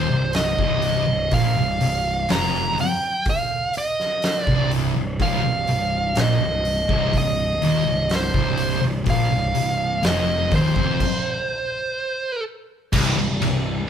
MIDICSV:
0, 0, Header, 1, 5, 480
1, 0, Start_track
1, 0, Key_signature, -3, "minor"
1, 0, Tempo, 967742
1, 653, Time_signature, 4, 2, 24, 8
1, 6892, End_track
2, 0, Start_track
2, 0, Title_t, "Lead electric guitar"
2, 0, Program_c, 0, 29
2, 0, Note_on_c, 0, 72, 81
2, 152, Note_off_c, 0, 72, 0
2, 178, Note_on_c, 0, 75, 90
2, 663, Note_on_c, 0, 77, 109
2, 671, Note_off_c, 0, 75, 0
2, 1149, Note_on_c, 0, 82, 108
2, 1155, Note_off_c, 0, 77, 0
2, 1367, Note_off_c, 0, 82, 0
2, 1392, Note_on_c, 0, 79, 96
2, 1609, Note_off_c, 0, 79, 0
2, 1636, Note_on_c, 0, 77, 106
2, 1851, Note_off_c, 0, 77, 0
2, 1875, Note_on_c, 0, 75, 82
2, 2178, Note_off_c, 0, 75, 0
2, 2178, Note_on_c, 0, 74, 82
2, 2328, Note_off_c, 0, 74, 0
2, 2590, Note_on_c, 0, 77, 114
2, 3078, Note_on_c, 0, 75, 107
2, 3080, Note_off_c, 0, 77, 0
2, 3554, Note_off_c, 0, 75, 0
2, 3560, Note_on_c, 0, 75, 96
2, 4044, Note_off_c, 0, 75, 0
2, 4046, Note_on_c, 0, 72, 95
2, 4373, Note_off_c, 0, 72, 0
2, 4513, Note_on_c, 0, 77, 103
2, 4990, Note_on_c, 0, 75, 85
2, 5000, Note_off_c, 0, 77, 0
2, 5231, Note_off_c, 0, 75, 0
2, 5235, Note_on_c, 0, 72, 73
2, 6163, Note_off_c, 0, 72, 0
2, 6892, End_track
3, 0, Start_track
3, 0, Title_t, "Distorted electric guitar"
3, 0, Program_c, 1, 30
3, 54, Note_on_c, 1, 36, 70
3, 245, Note_off_c, 1, 36, 0
3, 295, Note_on_c, 1, 36, 94
3, 527, Note_off_c, 1, 36, 0
3, 536, Note_on_c, 1, 36, 70
3, 653, Note_off_c, 1, 36, 0
3, 655, Note_on_c, 1, 46, 105
3, 767, Note_off_c, 1, 46, 0
3, 779, Note_on_c, 1, 36, 70
3, 892, Note_off_c, 1, 36, 0
3, 898, Note_on_c, 1, 36, 75
3, 1089, Note_off_c, 1, 36, 0
3, 1139, Note_on_c, 1, 41, 102
3, 1371, Note_off_c, 1, 41, 0
3, 2223, Note_on_c, 1, 36, 106
3, 2454, Note_off_c, 1, 36, 0
3, 2462, Note_on_c, 1, 36, 78
3, 2574, Note_off_c, 1, 36, 0
3, 2580, Note_on_c, 1, 36, 114
3, 2693, Note_off_c, 1, 36, 0
3, 2699, Note_on_c, 1, 36, 66
3, 2814, Note_off_c, 1, 36, 0
3, 2820, Note_on_c, 1, 36, 78
3, 3012, Note_off_c, 1, 36, 0
3, 3059, Note_on_c, 1, 46, 96
3, 3173, Note_off_c, 1, 46, 0
3, 3176, Note_on_c, 1, 36, 83
3, 3370, Note_off_c, 1, 36, 0
3, 3418, Note_on_c, 1, 36, 95
3, 3532, Note_off_c, 1, 36, 0
3, 3542, Note_on_c, 1, 36, 71
3, 3734, Note_off_c, 1, 36, 0
3, 3779, Note_on_c, 1, 39, 100
3, 3893, Note_off_c, 1, 39, 0
3, 3896, Note_on_c, 1, 36, 74
3, 4090, Note_off_c, 1, 36, 0
3, 4137, Note_on_c, 1, 36, 97
3, 4367, Note_off_c, 1, 36, 0
3, 4373, Note_on_c, 1, 36, 77
3, 4485, Note_off_c, 1, 36, 0
3, 4487, Note_on_c, 1, 46, 100
3, 4606, Note_off_c, 1, 46, 0
3, 4615, Note_on_c, 1, 36, 65
3, 4729, Note_off_c, 1, 36, 0
3, 4735, Note_on_c, 1, 36, 78
3, 4929, Note_off_c, 1, 36, 0
3, 4973, Note_on_c, 1, 41, 98
3, 5208, Note_off_c, 1, 41, 0
3, 5217, Note_on_c, 1, 39, 91
3, 5330, Note_off_c, 1, 39, 0
3, 5337, Note_on_c, 1, 41, 98
3, 5450, Note_off_c, 1, 41, 0
3, 6413, Note_on_c, 1, 36, 107
3, 6523, Note_off_c, 1, 36, 0
3, 6529, Note_on_c, 1, 36, 72
3, 6647, Note_off_c, 1, 36, 0
3, 6653, Note_on_c, 1, 36, 76
3, 6843, Note_off_c, 1, 36, 0
3, 6892, End_track
4, 0, Start_track
4, 0, Title_t, "Picked electric bass"
4, 0, Program_c, 2, 34
4, 56, Note_on_c, 2, 24, 85
4, 278, Note_off_c, 2, 24, 0
4, 294, Note_on_c, 2, 24, 97
4, 517, Note_off_c, 2, 24, 0
4, 538, Note_on_c, 2, 24, 86
4, 647, Note_off_c, 2, 24, 0
4, 655, Note_on_c, 2, 34, 88
4, 766, Note_off_c, 2, 34, 0
4, 782, Note_on_c, 2, 24, 77
4, 890, Note_off_c, 2, 24, 0
4, 900, Note_on_c, 2, 24, 67
4, 1122, Note_off_c, 2, 24, 0
4, 1140, Note_on_c, 2, 29, 92
4, 1362, Note_off_c, 2, 29, 0
4, 2218, Note_on_c, 2, 24, 93
4, 2442, Note_off_c, 2, 24, 0
4, 2464, Note_on_c, 2, 24, 78
4, 2574, Note_off_c, 2, 24, 0
4, 2581, Note_on_c, 2, 24, 85
4, 2693, Note_off_c, 2, 24, 0
4, 2699, Note_on_c, 2, 24, 75
4, 2811, Note_off_c, 2, 24, 0
4, 2821, Note_on_c, 2, 24, 75
4, 3044, Note_off_c, 2, 24, 0
4, 3053, Note_on_c, 2, 34, 98
4, 3169, Note_off_c, 2, 34, 0
4, 3179, Note_on_c, 2, 24, 76
4, 3403, Note_off_c, 2, 24, 0
4, 3419, Note_on_c, 2, 24, 95
4, 3532, Note_off_c, 2, 24, 0
4, 3542, Note_on_c, 2, 24, 80
4, 3765, Note_off_c, 2, 24, 0
4, 3774, Note_on_c, 2, 27, 90
4, 3889, Note_off_c, 2, 27, 0
4, 3897, Note_on_c, 2, 24, 76
4, 4122, Note_off_c, 2, 24, 0
4, 4138, Note_on_c, 2, 24, 98
4, 4363, Note_off_c, 2, 24, 0
4, 4377, Note_on_c, 2, 24, 77
4, 4490, Note_off_c, 2, 24, 0
4, 4499, Note_on_c, 2, 34, 92
4, 4611, Note_off_c, 2, 34, 0
4, 4618, Note_on_c, 2, 24, 82
4, 4731, Note_off_c, 2, 24, 0
4, 4734, Note_on_c, 2, 24, 72
4, 4960, Note_off_c, 2, 24, 0
4, 4977, Note_on_c, 2, 29, 89
4, 5201, Note_off_c, 2, 29, 0
4, 5220, Note_on_c, 2, 27, 85
4, 5331, Note_off_c, 2, 27, 0
4, 5338, Note_on_c, 2, 29, 91
4, 5449, Note_off_c, 2, 29, 0
4, 6414, Note_on_c, 2, 24, 89
4, 6524, Note_off_c, 2, 24, 0
4, 6533, Note_on_c, 2, 24, 84
4, 6644, Note_off_c, 2, 24, 0
4, 6659, Note_on_c, 2, 24, 70
4, 6878, Note_off_c, 2, 24, 0
4, 6892, End_track
5, 0, Start_track
5, 0, Title_t, "Drums"
5, 164, Note_on_c, 9, 46, 70
5, 173, Note_on_c, 9, 38, 106
5, 214, Note_off_c, 9, 46, 0
5, 223, Note_off_c, 9, 38, 0
5, 291, Note_on_c, 9, 36, 100
5, 340, Note_off_c, 9, 36, 0
5, 407, Note_on_c, 9, 46, 56
5, 457, Note_off_c, 9, 46, 0
5, 651, Note_on_c, 9, 46, 83
5, 654, Note_on_c, 9, 36, 103
5, 701, Note_off_c, 9, 46, 0
5, 703, Note_off_c, 9, 36, 0
5, 896, Note_on_c, 9, 46, 59
5, 946, Note_off_c, 9, 46, 0
5, 1135, Note_on_c, 9, 46, 80
5, 1143, Note_on_c, 9, 38, 114
5, 1184, Note_off_c, 9, 46, 0
5, 1193, Note_off_c, 9, 38, 0
5, 1266, Note_on_c, 9, 38, 36
5, 1315, Note_off_c, 9, 38, 0
5, 1379, Note_on_c, 9, 46, 59
5, 1428, Note_off_c, 9, 46, 0
5, 1614, Note_on_c, 9, 46, 76
5, 1617, Note_on_c, 9, 36, 109
5, 1664, Note_off_c, 9, 46, 0
5, 1667, Note_off_c, 9, 36, 0
5, 1853, Note_on_c, 9, 46, 59
5, 1902, Note_off_c, 9, 46, 0
5, 1983, Note_on_c, 9, 38, 33
5, 2032, Note_off_c, 9, 38, 0
5, 2094, Note_on_c, 9, 46, 73
5, 2102, Note_on_c, 9, 38, 109
5, 2144, Note_off_c, 9, 46, 0
5, 2152, Note_off_c, 9, 38, 0
5, 2218, Note_on_c, 9, 36, 102
5, 2267, Note_off_c, 9, 36, 0
5, 2338, Note_on_c, 9, 46, 58
5, 2387, Note_off_c, 9, 46, 0
5, 2577, Note_on_c, 9, 36, 107
5, 2578, Note_on_c, 9, 46, 71
5, 2627, Note_off_c, 9, 36, 0
5, 2628, Note_off_c, 9, 46, 0
5, 2814, Note_on_c, 9, 46, 44
5, 2864, Note_off_c, 9, 46, 0
5, 3052, Note_on_c, 9, 46, 68
5, 3061, Note_on_c, 9, 38, 125
5, 3102, Note_off_c, 9, 46, 0
5, 3110, Note_off_c, 9, 38, 0
5, 3299, Note_on_c, 9, 46, 52
5, 3348, Note_off_c, 9, 46, 0
5, 3418, Note_on_c, 9, 36, 108
5, 3467, Note_off_c, 9, 36, 0
5, 3539, Note_on_c, 9, 36, 91
5, 3540, Note_on_c, 9, 46, 78
5, 3588, Note_off_c, 9, 36, 0
5, 3589, Note_off_c, 9, 46, 0
5, 3779, Note_on_c, 9, 46, 51
5, 3829, Note_off_c, 9, 46, 0
5, 4015, Note_on_c, 9, 46, 72
5, 4024, Note_on_c, 9, 38, 104
5, 4065, Note_off_c, 9, 46, 0
5, 4073, Note_off_c, 9, 38, 0
5, 4137, Note_on_c, 9, 36, 102
5, 4187, Note_off_c, 9, 36, 0
5, 4253, Note_on_c, 9, 46, 61
5, 4303, Note_off_c, 9, 46, 0
5, 4493, Note_on_c, 9, 46, 77
5, 4497, Note_on_c, 9, 36, 99
5, 4543, Note_off_c, 9, 46, 0
5, 4547, Note_off_c, 9, 36, 0
5, 4736, Note_on_c, 9, 46, 53
5, 4785, Note_off_c, 9, 46, 0
5, 4975, Note_on_c, 9, 46, 81
5, 4983, Note_on_c, 9, 38, 125
5, 5025, Note_off_c, 9, 46, 0
5, 5033, Note_off_c, 9, 38, 0
5, 5215, Note_on_c, 9, 46, 55
5, 5217, Note_on_c, 9, 36, 104
5, 5265, Note_off_c, 9, 46, 0
5, 5267, Note_off_c, 9, 36, 0
5, 5337, Note_on_c, 9, 36, 102
5, 5386, Note_off_c, 9, 36, 0
5, 5457, Note_on_c, 9, 36, 101
5, 5458, Note_on_c, 9, 49, 102
5, 5507, Note_off_c, 9, 36, 0
5, 5507, Note_off_c, 9, 49, 0
5, 6411, Note_on_c, 9, 49, 126
5, 6413, Note_on_c, 9, 36, 112
5, 6461, Note_off_c, 9, 49, 0
5, 6462, Note_off_c, 9, 36, 0
5, 6655, Note_on_c, 9, 51, 75
5, 6704, Note_off_c, 9, 51, 0
5, 6892, End_track
0, 0, End_of_file